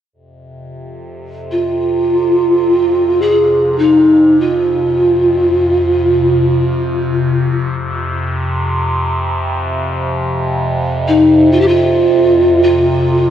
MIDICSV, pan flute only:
0, 0, Header, 1, 2, 480
1, 0, Start_track
1, 0, Tempo, 500000
1, 12770, End_track
2, 0, Start_track
2, 0, Title_t, "Pan flute"
2, 0, Program_c, 0, 75
2, 1454, Note_on_c, 0, 65, 74
2, 3086, Note_on_c, 0, 68, 68
2, 3100, Note_off_c, 0, 65, 0
2, 3630, Note_on_c, 0, 63, 62
2, 3645, Note_off_c, 0, 68, 0
2, 4227, Note_on_c, 0, 65, 73
2, 4241, Note_off_c, 0, 63, 0
2, 7222, Note_off_c, 0, 65, 0
2, 10634, Note_on_c, 0, 63, 70
2, 11059, Note_on_c, 0, 65, 77
2, 11073, Note_off_c, 0, 63, 0
2, 11141, Note_on_c, 0, 67, 69
2, 11156, Note_off_c, 0, 65, 0
2, 11210, Note_on_c, 0, 65, 91
2, 11224, Note_off_c, 0, 67, 0
2, 12121, Note_off_c, 0, 65, 0
2, 12127, Note_on_c, 0, 65, 89
2, 12770, Note_off_c, 0, 65, 0
2, 12770, End_track
0, 0, End_of_file